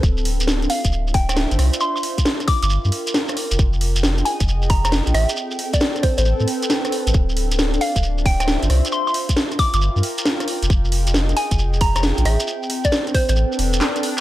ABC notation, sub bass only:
X:1
M:4/4
L:1/16
Q:"Swing 16ths" 1/4=135
K:Dm
V:1 name="Sub bass" clef=bass
D,,,6 z D,,,6 G,,, C,, z | z6 z G,,,2 G,, z4 z F,,, | F,,,6 z F,,,6 B,,, A,,, z | z6 z A,,,2 A,, z4 z A,,, |
D,,,6 z D,,,6 G,,, C,, z | z6 z G,,,2 G,, z4 z F,,, | F,,,6 z F,,,6 B,,, A,,, z | z6 z A,,,2 z E,,,2 z4 |]